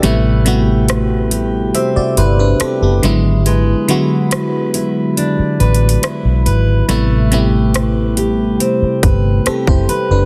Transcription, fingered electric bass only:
\new Staff \with { instrumentName = "Fingered electric bass" } { \clef bass \time 4/4 \key a \dorian \tempo 4 = 70 a,,2 r8 g,,8 r16 fis,,16 gis,,8~ | gis,,8 r2 a,,8 r16 b,,16 gis,,8 | a,,2 r8 g,,8 r16 fis,,16 r16 fis,,16 | }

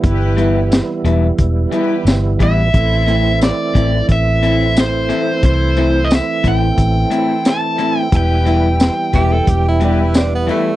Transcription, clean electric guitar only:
\new Staff \with { instrumentName = "Clean electric guitar" } { \time 4/4 \key e \minor \tempo 4 = 89 r8 <e g b e'>8 r8 <e g b e'>8 r8 <e g b e'>8 r8 <e g b e'>8 | r8 <a, a c' e'>8 r8 <a, a c' e'>8 r8 <a, a c' e'>8 r8 <a, a c' e'>8 | r8 <a, a c' e'>8 r8 <a, a c' e'>8 r8 <a, a c' e'>8 r8 <a, a c' e'>8 | r8 <e g b e'>8 r8 <e g b e'>8 r8 <e g b e'>8 r8 <e g b e'>8 | }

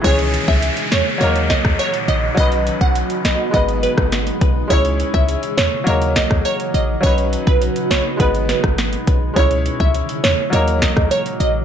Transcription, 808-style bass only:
\new Staff \with { instrumentName = "808-style bass" } { \clef bass \time 4/4 \key cis \dorian \tempo 4 = 103 cis,8. cis,8 r16 e,16 r16 dis,8. dis,16 r8 ais,,8 | b,,8. b,,8 r16 b,,16 r16 gis,,8. gis,,8. b,,8 | cis,8. cis,8 r16 e,16 r16 dis,8. dis,16 r8 ais,,8 | b,,8. b,,8 r16 b,,16 r16 gis,,8. gis,,8. b,,8 |
cis,8. cis,8 r16 e,16 r16 dis,8. dis,16 r8 ais,,8 | }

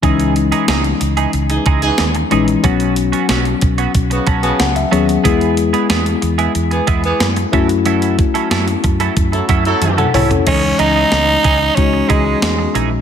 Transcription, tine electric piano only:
\new Staff \with { instrumentName = "Tine electric piano" } { \time 4/4 \key cis \minor \tempo 4 = 92 << { r1 | r2 r8 a''16 gis''16 fis''16 e''8. | r1 | r2. r16 <a' fis''>16 <e' cis''>16 <cis' a'>16~ |
<cis' a'>16 r2. r8. | } \\ { <e gis cis' dis'>4.~ <e gis cis' dis'>16 r4. r16 <e gis cis' dis'>8 | <fis b cis' fis'>4.~ <fis b cis' fis'>16 r4. r16 <fis b cis' gis'>8 | <gis b e' gis'>4.~ <gis b e' gis'>16 r4. r16 <a cis' e' fis'>8~ | <a cis' e' fis'>4~ <a cis' e' fis'>16 r2 r8. |
<e gis cis' dis'>4.~ <e gis cis' dis'>16 r16 <gis cis' dis' fis'>4.~ <gis cis' dis' fis'>16 r16 | } >> }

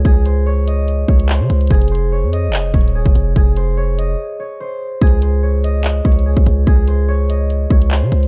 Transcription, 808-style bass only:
\new Staff \with { instrumentName = "808-style bass" } { \clef bass \time 4/4 \key des \lydian \tempo 4 = 145 des,2~ des,8 des,8. des16 des,8 | f,,4~ f,,16 f,8~ f,32 f,,8~ f,,32 ees,,8. f,,16 f,,8 | f,,2 r2 | des,2~ des,8 des,8. des,16 des,8 |
des,2~ des,8 des,8. des16 des,8 | }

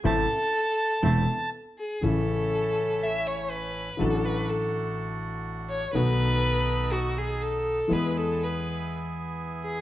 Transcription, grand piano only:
\new Staff \with { instrumentName = "Grand piano" } { \clef bass \time 4/4 \key a \minor \tempo 4 = 122 <a,, a, c e a e'>8 r4. <e,, e, c e a e'>8 r4. | \key a \major <a,, a, cis e a e'>1 | <a,, a, d fis a fis'>1 | <b,, b, dis a b fis'>1 |
<e, e gis b gis'>1 | }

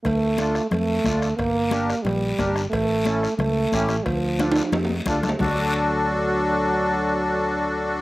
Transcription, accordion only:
\new Staff \with { instrumentName = "Accordion" } { \time 4/4 \key a \phrygian \tempo 4 = 179 r4 <d' f' a'>8 r4. <d' f' a'>8 r8 | r4 <d' g' bes'>8 r4. <d' g' bes'>8 r8 | r4 <cis' e' a'>8 r4. <cis' e' g'>8 r8 | r4 <d' f' a'>8 r4. <d' f' a'>8 r8 |
<d' fis' a'>1~ | <d' fis' a'>1 | }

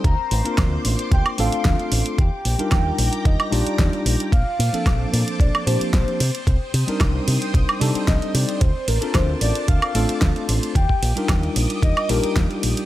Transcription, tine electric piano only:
\new Staff \with { instrumentName = "Tine electric piano" } { \time 4/4 \key bes \major \tempo 4 = 112 r8. <bes c' d' f' bes'>4.~ <bes c' d' f' bes'>16 <a c' d' f' a'>4. | r8. <g d' ees' f' bes'>4.~ <g d' ees' f' bes'>16 <g d' ees' f' g'>4. | r8. <f bes c' d' a'>4.~ <f bes c' d' a'>16 <f bes c' d' g'>4 r8 | r8. <g c' d' ees' bes'>4.~ <g c' d' ees' bes'>16 <g c' d' ees' a'>4. |
r8. <c' d' f' a' bes'>4.~ <c' d' f' a' bes'>16 <a c' d' f' a'>4. | r8. <g d' ees' f' bes'>4.~ <g d' ees' f' bes'>16 <g d' ees' f' g'>4. | }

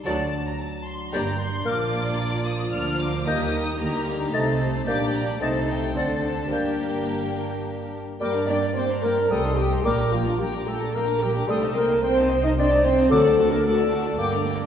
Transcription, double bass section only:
\new Staff \with { instrumentName = "Double bass section" } { \clef bass \time 3/4 \key g \minor \tempo 4 = 111 d,4 r4 g,,4 | bes,,2 d,4 | ees,4 d,4 c,4 | bes,,4 c,4 d,4 |
g,,2~ g,,8 r8 | g,2 c,4 | bes,,2. | c,2. |
d,2 g,,4 | }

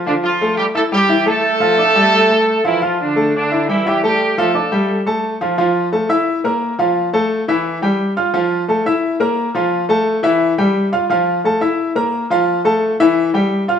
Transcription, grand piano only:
\new Staff \with { instrumentName = "Grand piano" } { \time 4/4 \key f \major \tempo 4 = 174 <f f' f''>4 <a a' a''>4 <e' e'' e'''>8 <g g' g''>8 <e e' e''>8 <a a' a''>8~ | <a a' a''>8 <f f' f''>8 <d' d'' d'''>8 <g g' g''>4 <a a' a''>4 <f f' f''>8 | <f f' f''>4 <a a' a''>4 <e' e'' e'''>8 <g g' g''>8 <e e' e''>8 <a a' a''>8~ | <a a' a''>8 <f f' f''>8 <d' d'' d'''>8 <g g' g''>4 <a a' a''>4 <f f' f''>8 |
<f f' f''>4 <a a' a''>8 <e' e'' e'''>4 <bes bes' bes''>4 <f f' f''>8~ | <f f' f''>8 <a a' a''>4 <e e' e''>4 <g g' g''>4 <f' f'' f'''>8 | <f f' f''>4 <a a' a''>8 <e' e'' e'''>4 <bes bes' bes''>4 <f f' f''>8~ | <f f' f''>8 <a a' a''>4 <e e' e''>4 <g g' g''>4 <f' f'' f'''>8 |
<f f' f''>4 <a a' a''>8 <e' e'' e'''>4 <bes bes' bes''>4 <f f' f''>8~ | <f f' f''>8 <a a' a''>4 <e e' e''>4 <g g' g''>4 <f' f'' f'''>8 | }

